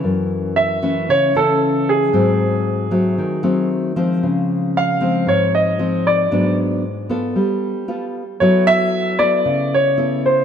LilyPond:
<<
  \new Staff \with { instrumentName = "Grand piano" } { \time 4/4 \key fis \minor \tempo 4 = 115 r4 e''4 cis''8 a'4 gis'8~ | gis'2. r4 | r4 eis''4 cis''8 dis''4 d''8~ | d''8 r2. r8 |
cis''8 e''4 d''4 cis''4 c''8 | }
  \new Staff \with { instrumentName = "Nylon-string guitar" } { \time 4/4 \key fis \minor << { <e a cis'>4. <e a cis'>4 <e a cis'>4. | <fis a bis>4. <fis a bis>4 <fis a bis>4 <f gis bis>8~ | <f gis bis>4. <eis gis bis>4. <eis gis bis>4 | <fis b d'>4 r8 <b f' a'>4. <b f' a'>8 r8 |
<b e' a'>4. <b e' a'>4. <b e' a'>4 | } \\ { fis,2 cis2 | gis,2 dis2 | cis2 gis,2 | gis,2 g2 |
fis2 cis2 | } >> }
>>